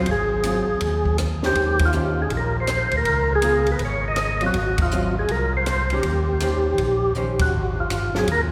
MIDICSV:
0, 0, Header, 1, 5, 480
1, 0, Start_track
1, 0, Key_signature, -4, "major"
1, 0, Tempo, 373134
1, 87, Time_signature, 4, 2, 24, 8
1, 10958, End_track
2, 0, Start_track
2, 0, Title_t, "Tonewheel organ"
2, 0, Program_c, 0, 16
2, 0, Note_on_c, 0, 72, 83
2, 130, Note_off_c, 0, 72, 0
2, 147, Note_on_c, 0, 68, 78
2, 1507, Note_off_c, 0, 68, 0
2, 1880, Note_on_c, 0, 67, 85
2, 2308, Note_off_c, 0, 67, 0
2, 2387, Note_on_c, 0, 65, 88
2, 2847, Note_off_c, 0, 65, 0
2, 2857, Note_on_c, 0, 68, 80
2, 2988, Note_off_c, 0, 68, 0
2, 3049, Note_on_c, 0, 70, 82
2, 3301, Note_off_c, 0, 70, 0
2, 3349, Note_on_c, 0, 72, 105
2, 3808, Note_off_c, 0, 72, 0
2, 3827, Note_on_c, 0, 70, 107
2, 4287, Note_off_c, 0, 70, 0
2, 4315, Note_on_c, 0, 68, 107
2, 4771, Note_off_c, 0, 68, 0
2, 4780, Note_on_c, 0, 71, 82
2, 4910, Note_off_c, 0, 71, 0
2, 4951, Note_on_c, 0, 73, 82
2, 5212, Note_off_c, 0, 73, 0
2, 5248, Note_on_c, 0, 75, 112
2, 5718, Note_off_c, 0, 75, 0
2, 5742, Note_on_c, 0, 66, 91
2, 6160, Note_off_c, 0, 66, 0
2, 6201, Note_on_c, 0, 65, 85
2, 6629, Note_off_c, 0, 65, 0
2, 6677, Note_on_c, 0, 68, 81
2, 6833, Note_off_c, 0, 68, 0
2, 6839, Note_on_c, 0, 70, 84
2, 7114, Note_off_c, 0, 70, 0
2, 7164, Note_on_c, 0, 72, 90
2, 7635, Note_on_c, 0, 67, 78
2, 7636, Note_off_c, 0, 72, 0
2, 9175, Note_off_c, 0, 67, 0
2, 9540, Note_on_c, 0, 66, 86
2, 9977, Note_off_c, 0, 66, 0
2, 10036, Note_on_c, 0, 65, 83
2, 10511, Note_off_c, 0, 65, 0
2, 10533, Note_on_c, 0, 68, 83
2, 10666, Note_off_c, 0, 68, 0
2, 10698, Note_on_c, 0, 70, 90
2, 10827, Note_off_c, 0, 70, 0
2, 10958, End_track
3, 0, Start_track
3, 0, Title_t, "Hollow-body jazz guitar"
3, 0, Program_c, 1, 26
3, 586, Note_on_c, 1, 54, 48
3, 590, Note_on_c, 1, 60, 54
3, 597, Note_on_c, 1, 65, 53
3, 857, Note_off_c, 1, 54, 0
3, 859, Note_off_c, 1, 60, 0
3, 862, Note_off_c, 1, 65, 0
3, 1853, Note_on_c, 1, 51, 68
3, 1853, Note_on_c, 1, 61, 64
3, 1861, Note_on_c, 1, 67, 65
3, 1869, Note_on_c, 1, 72, 72
3, 2462, Note_off_c, 1, 51, 0
3, 2462, Note_off_c, 1, 61, 0
3, 2466, Note_off_c, 1, 67, 0
3, 2470, Note_off_c, 1, 72, 0
3, 2492, Note_on_c, 1, 51, 54
3, 2497, Note_on_c, 1, 61, 60
3, 2506, Note_on_c, 1, 67, 51
3, 2507, Note_on_c, 1, 72, 57
3, 2770, Note_off_c, 1, 51, 0
3, 2773, Note_off_c, 1, 61, 0
3, 2777, Note_off_c, 1, 67, 0
3, 2778, Note_off_c, 1, 72, 0
3, 4415, Note_on_c, 1, 59, 51
3, 4426, Note_on_c, 1, 65, 59
3, 4435, Note_on_c, 1, 70, 60
3, 4692, Note_off_c, 1, 59, 0
3, 4697, Note_off_c, 1, 65, 0
3, 4702, Note_off_c, 1, 70, 0
3, 5680, Note_on_c, 1, 54, 61
3, 5694, Note_on_c, 1, 60, 61
3, 5694, Note_on_c, 1, 65, 70
3, 5833, Note_off_c, 1, 54, 0
3, 5840, Note_off_c, 1, 60, 0
3, 5840, Note_off_c, 1, 65, 0
3, 6341, Note_on_c, 1, 54, 53
3, 6348, Note_on_c, 1, 60, 58
3, 6353, Note_on_c, 1, 65, 63
3, 6615, Note_off_c, 1, 54, 0
3, 6619, Note_off_c, 1, 60, 0
3, 6621, Note_off_c, 1, 65, 0
3, 7619, Note_on_c, 1, 51, 55
3, 7621, Note_on_c, 1, 61, 57
3, 7627, Note_on_c, 1, 67, 64
3, 7629, Note_on_c, 1, 72, 60
3, 7763, Note_off_c, 1, 51, 0
3, 7764, Note_off_c, 1, 61, 0
3, 7767, Note_off_c, 1, 67, 0
3, 7768, Note_off_c, 1, 72, 0
3, 8254, Note_on_c, 1, 51, 52
3, 8258, Note_on_c, 1, 61, 56
3, 8266, Note_on_c, 1, 67, 58
3, 8269, Note_on_c, 1, 72, 60
3, 8980, Note_off_c, 1, 51, 0
3, 8982, Note_off_c, 1, 61, 0
3, 8986, Note_off_c, 1, 67, 0
3, 8987, Note_off_c, 1, 72, 0
3, 9213, Note_on_c, 1, 51, 63
3, 9217, Note_on_c, 1, 61, 65
3, 9220, Note_on_c, 1, 67, 59
3, 9226, Note_on_c, 1, 72, 64
3, 9491, Note_off_c, 1, 51, 0
3, 9493, Note_off_c, 1, 61, 0
3, 9494, Note_off_c, 1, 67, 0
3, 9497, Note_off_c, 1, 72, 0
3, 10481, Note_on_c, 1, 54, 54
3, 10484, Note_on_c, 1, 60, 56
3, 10494, Note_on_c, 1, 65, 59
3, 10633, Note_off_c, 1, 54, 0
3, 10634, Note_off_c, 1, 60, 0
3, 10639, Note_off_c, 1, 65, 0
3, 10958, End_track
4, 0, Start_track
4, 0, Title_t, "Tonewheel organ"
4, 0, Program_c, 2, 16
4, 86, Note_on_c, 2, 32, 76
4, 827, Note_off_c, 2, 32, 0
4, 881, Note_on_c, 2, 32, 37
4, 966, Note_off_c, 2, 32, 0
4, 1046, Note_on_c, 2, 39, 77
4, 1960, Note_off_c, 2, 39, 0
4, 2010, Note_on_c, 2, 39, 78
4, 2922, Note_off_c, 2, 39, 0
4, 2969, Note_on_c, 2, 34, 76
4, 3708, Note_off_c, 2, 34, 0
4, 3754, Note_on_c, 2, 38, 61
4, 3915, Note_off_c, 2, 38, 0
4, 3927, Note_on_c, 2, 37, 83
4, 4840, Note_off_c, 2, 37, 0
4, 4887, Note_on_c, 2, 32, 82
4, 5801, Note_off_c, 2, 32, 0
4, 5843, Note_on_c, 2, 32, 85
4, 6759, Note_off_c, 2, 32, 0
4, 6809, Note_on_c, 2, 36, 75
4, 7721, Note_off_c, 2, 36, 0
4, 7762, Note_on_c, 2, 39, 85
4, 8678, Note_off_c, 2, 39, 0
4, 8725, Note_on_c, 2, 34, 74
4, 9174, Note_off_c, 2, 34, 0
4, 9203, Note_on_c, 2, 34, 70
4, 9653, Note_off_c, 2, 34, 0
4, 9684, Note_on_c, 2, 32, 86
4, 10132, Note_off_c, 2, 32, 0
4, 10165, Note_on_c, 2, 31, 73
4, 10613, Note_off_c, 2, 31, 0
4, 10647, Note_on_c, 2, 39, 78
4, 10958, Note_off_c, 2, 39, 0
4, 10958, End_track
5, 0, Start_track
5, 0, Title_t, "Drums"
5, 76, Note_on_c, 9, 51, 51
5, 87, Note_on_c, 9, 36, 29
5, 204, Note_off_c, 9, 51, 0
5, 215, Note_off_c, 9, 36, 0
5, 559, Note_on_c, 9, 44, 54
5, 559, Note_on_c, 9, 51, 65
5, 688, Note_off_c, 9, 44, 0
5, 688, Note_off_c, 9, 51, 0
5, 1036, Note_on_c, 9, 51, 57
5, 1047, Note_on_c, 9, 36, 28
5, 1165, Note_off_c, 9, 51, 0
5, 1176, Note_off_c, 9, 36, 0
5, 1357, Note_on_c, 9, 36, 59
5, 1485, Note_off_c, 9, 36, 0
5, 1519, Note_on_c, 9, 44, 53
5, 1519, Note_on_c, 9, 51, 55
5, 1525, Note_on_c, 9, 37, 51
5, 1647, Note_off_c, 9, 44, 0
5, 1647, Note_off_c, 9, 51, 0
5, 1654, Note_off_c, 9, 37, 0
5, 1838, Note_on_c, 9, 38, 35
5, 1967, Note_off_c, 9, 38, 0
5, 1999, Note_on_c, 9, 51, 51
5, 2008, Note_on_c, 9, 36, 30
5, 2127, Note_off_c, 9, 51, 0
5, 2137, Note_off_c, 9, 36, 0
5, 2306, Note_on_c, 9, 51, 62
5, 2318, Note_on_c, 9, 36, 75
5, 2435, Note_off_c, 9, 51, 0
5, 2446, Note_off_c, 9, 36, 0
5, 2473, Note_on_c, 9, 44, 54
5, 2602, Note_off_c, 9, 44, 0
5, 2961, Note_on_c, 9, 51, 47
5, 2968, Note_on_c, 9, 36, 30
5, 3090, Note_off_c, 9, 51, 0
5, 3096, Note_off_c, 9, 36, 0
5, 3438, Note_on_c, 9, 44, 56
5, 3438, Note_on_c, 9, 51, 57
5, 3444, Note_on_c, 9, 37, 53
5, 3566, Note_off_c, 9, 44, 0
5, 3566, Note_off_c, 9, 51, 0
5, 3573, Note_off_c, 9, 37, 0
5, 3749, Note_on_c, 9, 51, 42
5, 3877, Note_off_c, 9, 51, 0
5, 3926, Note_on_c, 9, 51, 54
5, 3928, Note_on_c, 9, 36, 31
5, 4055, Note_off_c, 9, 51, 0
5, 4057, Note_off_c, 9, 36, 0
5, 4398, Note_on_c, 9, 44, 55
5, 4398, Note_on_c, 9, 51, 62
5, 4527, Note_off_c, 9, 44, 0
5, 4527, Note_off_c, 9, 51, 0
5, 4714, Note_on_c, 9, 51, 43
5, 4843, Note_off_c, 9, 51, 0
5, 4876, Note_on_c, 9, 51, 50
5, 4887, Note_on_c, 9, 36, 28
5, 5005, Note_off_c, 9, 51, 0
5, 5015, Note_off_c, 9, 36, 0
5, 5351, Note_on_c, 9, 44, 41
5, 5351, Note_on_c, 9, 51, 59
5, 5357, Note_on_c, 9, 37, 54
5, 5479, Note_off_c, 9, 44, 0
5, 5479, Note_off_c, 9, 51, 0
5, 5486, Note_off_c, 9, 37, 0
5, 5669, Note_on_c, 9, 51, 44
5, 5797, Note_off_c, 9, 51, 0
5, 5837, Note_on_c, 9, 51, 51
5, 5847, Note_on_c, 9, 36, 30
5, 5965, Note_off_c, 9, 51, 0
5, 5975, Note_off_c, 9, 36, 0
5, 6147, Note_on_c, 9, 51, 69
5, 6157, Note_on_c, 9, 36, 78
5, 6276, Note_off_c, 9, 51, 0
5, 6285, Note_off_c, 9, 36, 0
5, 6319, Note_on_c, 9, 44, 63
5, 6448, Note_off_c, 9, 44, 0
5, 6798, Note_on_c, 9, 51, 48
5, 6808, Note_on_c, 9, 36, 30
5, 6927, Note_off_c, 9, 51, 0
5, 6937, Note_off_c, 9, 36, 0
5, 7282, Note_on_c, 9, 44, 49
5, 7282, Note_on_c, 9, 51, 55
5, 7289, Note_on_c, 9, 37, 54
5, 7411, Note_off_c, 9, 44, 0
5, 7411, Note_off_c, 9, 51, 0
5, 7417, Note_off_c, 9, 37, 0
5, 7589, Note_on_c, 9, 51, 41
5, 7718, Note_off_c, 9, 51, 0
5, 7756, Note_on_c, 9, 51, 55
5, 7764, Note_on_c, 9, 36, 30
5, 7884, Note_off_c, 9, 51, 0
5, 7893, Note_off_c, 9, 36, 0
5, 8237, Note_on_c, 9, 44, 54
5, 8237, Note_on_c, 9, 51, 63
5, 8366, Note_off_c, 9, 44, 0
5, 8366, Note_off_c, 9, 51, 0
5, 8722, Note_on_c, 9, 51, 53
5, 8726, Note_on_c, 9, 36, 30
5, 8851, Note_off_c, 9, 51, 0
5, 8855, Note_off_c, 9, 36, 0
5, 9193, Note_on_c, 9, 44, 46
5, 9322, Note_off_c, 9, 44, 0
5, 9510, Note_on_c, 9, 51, 62
5, 9516, Note_on_c, 9, 36, 75
5, 9639, Note_off_c, 9, 51, 0
5, 9645, Note_off_c, 9, 36, 0
5, 10165, Note_on_c, 9, 44, 52
5, 10165, Note_on_c, 9, 51, 64
5, 10293, Note_off_c, 9, 44, 0
5, 10293, Note_off_c, 9, 51, 0
5, 10481, Note_on_c, 9, 38, 35
5, 10610, Note_off_c, 9, 38, 0
5, 10646, Note_on_c, 9, 51, 60
5, 10650, Note_on_c, 9, 36, 31
5, 10775, Note_off_c, 9, 51, 0
5, 10779, Note_off_c, 9, 36, 0
5, 10958, End_track
0, 0, End_of_file